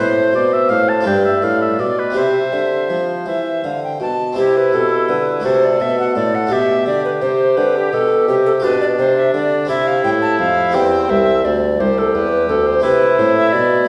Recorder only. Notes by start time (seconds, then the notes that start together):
0.00 C5
1.07 D5
2.17 E5
3.27 E5
3.65 F5
3.84 G5
4.01 A5
4.38 G4
4.57 B4
4.74 A4
5.10 B4
5.45 C5
5.64 D5
5.81 E5
5.99 F#5
6.15 D5
6.35 F#5
6.52 E5
6.87 D5
7.05 B4
7.21 C5
7.57 B4
7.76 G4
7.94 A4
8.29 G4
8.46 A4
8.63 B4
8.81 D5
8.99 C5
9.17 E5
9.33 D5
9.69 E5
9.87 F5
10.04 G5
10.22 A5
10.39 F5
10.75 G5
11.10 E5
11.45 D5
11.80 C5
11.98 A4
12.15 B4
12.49 A4
12.66 C5
12.83 B4
13.18 C5
13.36 E5
13.52 D5